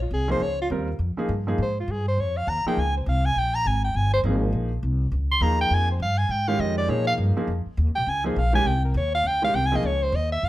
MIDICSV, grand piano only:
0, 0, Header, 1, 2, 480
1, 0, Start_track
1, 0, Tempo, 294406
1, 1627, Time_signature, 4, 2, 24, 8
1, 17100, End_track
2, 0, Start_track
2, 0, Title_t, "Grand piano"
2, 0, Program_c, 0, 0
2, 457, Note_on_c, 0, 53, 64
2, 464, Note_on_c, 0, 58, 59
2, 477, Note_on_c, 0, 63, 60
2, 477, Note_on_c, 0, 68, 72
2, 637, Note_off_c, 0, 53, 0
2, 641, Note_off_c, 0, 58, 0
2, 647, Note_off_c, 0, 63, 0
2, 647, Note_off_c, 0, 68, 0
2, 1156, Note_on_c, 0, 55, 55
2, 1156, Note_on_c, 0, 60, 50
2, 1168, Note_on_c, 0, 65, 50
2, 1168, Note_on_c, 0, 70, 66
2, 1414, Note_off_c, 0, 55, 0
2, 1415, Note_off_c, 0, 60, 0
2, 1420, Note_off_c, 0, 65, 0
2, 1421, Note_off_c, 0, 70, 0
2, 1911, Note_on_c, 0, 53, 61
2, 1923, Note_on_c, 0, 58, 56
2, 1926, Note_on_c, 0, 63, 53
2, 1937, Note_on_c, 0, 68, 71
2, 2084, Note_off_c, 0, 53, 0
2, 2090, Note_off_c, 0, 58, 0
2, 2091, Note_off_c, 0, 63, 0
2, 2097, Note_off_c, 0, 68, 0
2, 2395, Note_on_c, 0, 53, 60
2, 2407, Note_on_c, 0, 58, 58
2, 2409, Note_on_c, 0, 63, 55
2, 2416, Note_on_c, 0, 68, 75
2, 2565, Note_off_c, 0, 53, 0
2, 2572, Note_off_c, 0, 58, 0
2, 2572, Note_off_c, 0, 63, 0
2, 2576, Note_off_c, 0, 68, 0
2, 4345, Note_on_c, 0, 53, 73
2, 4353, Note_on_c, 0, 58, 61
2, 4357, Note_on_c, 0, 63, 64
2, 4363, Note_on_c, 0, 68, 77
2, 4500, Note_off_c, 0, 53, 0
2, 4504, Note_off_c, 0, 58, 0
2, 4506, Note_off_c, 0, 63, 0
2, 4509, Note_off_c, 0, 68, 0
2, 6928, Note_on_c, 0, 58, 55
2, 6929, Note_on_c, 0, 53, 59
2, 6929, Note_on_c, 0, 63, 53
2, 6941, Note_on_c, 0, 68, 67
2, 7629, Note_off_c, 0, 58, 0
2, 7630, Note_off_c, 0, 53, 0
2, 7630, Note_off_c, 0, 63, 0
2, 7636, Note_off_c, 0, 68, 0
2, 8825, Note_on_c, 0, 53, 57
2, 8827, Note_on_c, 0, 58, 54
2, 8844, Note_on_c, 0, 63, 55
2, 8844, Note_on_c, 0, 68, 63
2, 9538, Note_off_c, 0, 53, 0
2, 9539, Note_off_c, 0, 58, 0
2, 9547, Note_off_c, 0, 63, 0
2, 9547, Note_off_c, 0, 68, 0
2, 10563, Note_on_c, 0, 51, 71
2, 10574, Note_on_c, 0, 56, 60
2, 10576, Note_on_c, 0, 61, 62
2, 10581, Note_on_c, 0, 67, 69
2, 11190, Note_off_c, 0, 51, 0
2, 11195, Note_off_c, 0, 56, 0
2, 11196, Note_off_c, 0, 61, 0
2, 11198, Note_off_c, 0, 67, 0
2, 11228, Note_on_c, 0, 53, 60
2, 11228, Note_on_c, 0, 58, 59
2, 11235, Note_on_c, 0, 63, 58
2, 11241, Note_on_c, 0, 68, 68
2, 11940, Note_off_c, 0, 53, 0
2, 11940, Note_off_c, 0, 58, 0
2, 11943, Note_off_c, 0, 63, 0
2, 11946, Note_off_c, 0, 68, 0
2, 12010, Note_on_c, 0, 58, 64
2, 12011, Note_on_c, 0, 53, 68
2, 12019, Note_on_c, 0, 63, 58
2, 12024, Note_on_c, 0, 68, 72
2, 12172, Note_off_c, 0, 53, 0
2, 12172, Note_off_c, 0, 58, 0
2, 12177, Note_off_c, 0, 63, 0
2, 12179, Note_off_c, 0, 68, 0
2, 13436, Note_on_c, 0, 53, 64
2, 13447, Note_on_c, 0, 58, 57
2, 13452, Note_on_c, 0, 63, 55
2, 13463, Note_on_c, 0, 68, 73
2, 13605, Note_off_c, 0, 53, 0
2, 13611, Note_off_c, 0, 58, 0
2, 13614, Note_off_c, 0, 63, 0
2, 13619, Note_off_c, 0, 68, 0
2, 13908, Note_on_c, 0, 51, 73
2, 13919, Note_on_c, 0, 56, 68
2, 13926, Note_on_c, 0, 61, 71
2, 13926, Note_on_c, 0, 67, 86
2, 14082, Note_off_c, 0, 51, 0
2, 14087, Note_off_c, 0, 56, 0
2, 14091, Note_off_c, 0, 61, 0
2, 14091, Note_off_c, 0, 67, 0
2, 15359, Note_on_c, 0, 51, 65
2, 15364, Note_on_c, 0, 56, 63
2, 15369, Note_on_c, 0, 61, 61
2, 15377, Note_on_c, 0, 67, 70
2, 15528, Note_off_c, 0, 51, 0
2, 15530, Note_off_c, 0, 56, 0
2, 15533, Note_off_c, 0, 61, 0
2, 15537, Note_off_c, 0, 67, 0
2, 15845, Note_on_c, 0, 53, 64
2, 15845, Note_on_c, 0, 58, 60
2, 15849, Note_on_c, 0, 63, 55
2, 15865, Note_on_c, 0, 68, 73
2, 16011, Note_off_c, 0, 53, 0
2, 16011, Note_off_c, 0, 58, 0
2, 16013, Note_off_c, 0, 63, 0
2, 16021, Note_off_c, 0, 68, 0
2, 17100, End_track
0, 0, End_of_file